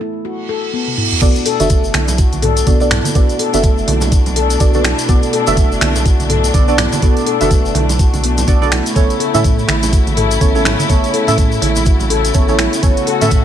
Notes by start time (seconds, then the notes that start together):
0.01 E4
0.25 F#4, reverse cymbal
0.49 A4
0.73 B3
0.87 high tom
0.97 E4, mid tom
1.12 mid tom
1.21 B1 B2 A3 B3 D4 F#4 A4 D5, kick, closed hi-hat, crash, muted conga, shaker
1.36 closed hi-hat, shaker
1.46 A4, open hi-hat
1.60 F#1 B3 D4 F#4 A4 E5, closed hi-hat, muted conga, high conga, shaker
1.70 A3, kick, closed hi-hat, shaker
1.84 shaker
1.94 B1 E4, finger snap, open hi-hat, high conga
2.08 closed hi-hat, muted conga, low conga, shaker
2.18 F#4, kick, closed hi-hat, shaker
2.32 B1, closed hi-hat, high conga, shaker
2.42 A4, open hi-hat, mid tom, muted conga, high conga
2.57 closed hi-hat, shaker
2.67 B1 B3 D4 F#4 A4 D5, kick, closed hi-hat, high conga, shaker
2.80 B3 D4 F#4 A4 D5, muted conga, shaker
2.91 E4, finger snap, open hi-hat, mid tom, low conga
3.04 closed hi-hat, high conga, shaker
3.15 B1 B3 D4 F#4 A4 D5, kick, closed hi-hat, muted conga, shaker
3.29 closed hi-hat, shaker
3.39 A4, open hi-hat
3.53 F#1 B3 D4 F#4 A4 E5, closed hi-hat, muted conga, high conga, shaker
3.63 A3, kick, closed hi-hat, shaker
3.78 shaker
3.88 B1 E4, open hi-hat, high conga
4.01 closed hi-hat, muted conga, low conga, shaker
4.12 F#4, kick, closed hi-hat, shaker
4.26 B1, closed hi-hat, low conga, shaker
4.36 A4, open hi-hat, muted conga
4.50 closed hi-hat, shaker
4.60 B1 B3 D4 F#4 A4 D5, kick, closed hi-hat, shaker
4.74 B3 D4 F#4 A4 D5, muted conga, shaker
4.84 E4, finger snap, open hi-hat, low conga
4.99 closed hi-hat, shaker
5.09 B1 B3 D4 F#4 A4 D5, kick, closed hi-hat, muted conga, shaker
5.23 closed hi-hat, shaker
5.33 A4, open hi-hat
5.47 F#1 B3 D4 F#4 A4 E5, closed hi-hat, muted conga, high conga, shaker
5.57 A3, kick, closed hi-hat, shaker
5.72 shaker
5.81 B1 E4, finger snap, open hi-hat, high conga
5.96 closed hi-hat, muted conga, low conga, shaker
6.05 F#4, kick, closed hi-hat, shaker
6.20 B1, closed hi-hat, high conga, shaker
6.29 A4, open hi-hat, mid tom, muted conga, high conga
6.44 closed hi-hat, shaker
6.54 B1 B3 D4 F#4 A4 D5, kick, closed hi-hat, high conga, shaker
6.68 B3 D4 F#4 A4 D5, muted conga, shaker
6.78 E4, finger snap, open hi-hat, mid tom, low conga
6.93 closed hi-hat, high conga, shaker
7.02 B1 B3 D4 F#4 A4 D5, kick, closed hi-hat, muted conga, shaker
7.17 closed hi-hat, shaker
7.26 A4, open hi-hat
7.41 F#1 B3 D4 F#4 A4 E5, closed hi-hat, muted conga, high conga, shaker
7.51 A3, kick, closed hi-hat, shaker
7.65 shaker
7.75 B1 E4, open hi-hat, high conga
7.89 closed hi-hat, muted conga, low conga, shaker
7.99 F#4, kick, closed hi-hat, shaker
8.14 B1, closed hi-hat, high conga, low conga, shaker
8.23 B3, open hi-hat, muted conga
8.38 closed hi-hat, low conga, shaker
8.47 B1 B3 D4 F#4 A4 D5, kick, closed hi-hat, shaker
8.62 B3 D4 F#4 A4 D5, muted conga, shaker
8.72 E4, finger snap, open hi-hat, low conga
8.86 closed hi-hat, shaker
8.95 A1 C#3 A3 B3 C#4 E4 A4 C#5, kick, closed hi-hat, muted conga, shaker
9.10 closed hi-hat, shaker
9.20 A4, open hi-hat
9.34 A2 A3 C#4 E4 A4 E5, closed hi-hat, muted conga, high conga, shaker
9.44 A3, kick, closed hi-hat, shaker
9.59 shaker
9.68 A1 E4, finger snap, open hi-hat, high conga
9.83 closed hi-hat, muted conga, low conga, shaker
9.93 F#4, kick, closed hi-hat, shaker
10.07 A1, closed hi-hat, high conga, shaker
10.17 A4, open hi-hat, mid tom, muted conga, high conga
10.31 closed hi-hat, shaker
10.40 A1 A3 B3 C#4 E4 A4 C#5, kick, closed hi-hat, high conga, shaker
10.55 A3 C#4 E4 A4 C#5, muted conga, shaker
10.65 E4, finger snap, open hi-hat, mid tom, low conga
10.79 closed hi-hat, high conga, shaker
10.89 A1 A3 B3 C#4 E4 A4 C#5, kick, closed hi-hat, muted conga, shaker
11.04 closed hi-hat, shaker
11.14 A4, open hi-hat
11.27 A2 A3 C#4 E4 A4 E5, closed hi-hat, muted conga, high conga, shaker
11.38 A3, kick, closed hi-hat, shaker
11.52 shaker
11.62 A1 E4, open hi-hat, high conga
11.76 closed hi-hat, muted conga, low conga, shaker
11.86 F#4, kick, closed hi-hat, shaker
11.99 A1, closed hi-hat, low conga, shaker
12.10 A4, open hi-hat, muted conga
12.25 closed hi-hat, shaker
12.34 A1 A3 B3 C#4 E4 A4 C#5, kick, closed hi-hat, shaker
12.48 A3 C#4 E4 A4 C#5, muted conga, shaker
12.59 E4, finger snap, open hi-hat, low conga
12.73 closed hi-hat, shaker
12.83 A1 A3 B3 C#4 E4 F#4 A4 C#5, kick, closed hi-hat, muted conga, shaker
12.97 closed hi-hat, shaker
13.07 A4, open hi-hat
13.21 A2 A3 C#4 E4 A4 E5, closed hi-hat, muted conga, high conga, shaker
13.31 A3, kick, closed hi-hat, shaker